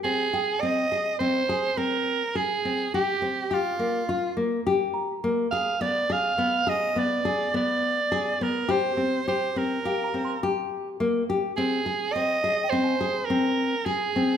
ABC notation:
X:1
M:5/4
L:1/16
Q:1/4=104
K:Ablyd
V:1 name="Celesta"
z2 g8 z8 z2 | z12 z2 b6- | b2 z16 z2 | z8 f b c'8 z2 |
z6 e g a8 z4 |]
V:2 name="Soprano saxophone"
A4 e4 c4 B4 A4 | G4 F6 z8 f2 | d2 f4 e2 d4 d6 B2 | c4 c2 B6 z8 |
A4 e4 c4 B4 A4 |]
V:3 name="Nylon-string guitar"
C2 A2 C2 A2 C2 A2 C4 A2 C2 | G2 C2 G2 B,2 F2 B,2 G4 B,2 A2 | _C2 A2 C2 A2 C2 A2 C4 A2 C2 | G2 C2 G2 C2 G2 C2 G4 B,2 G2 |
C2 A2 C2 A2 C2 A2 C4 A2 C2 |]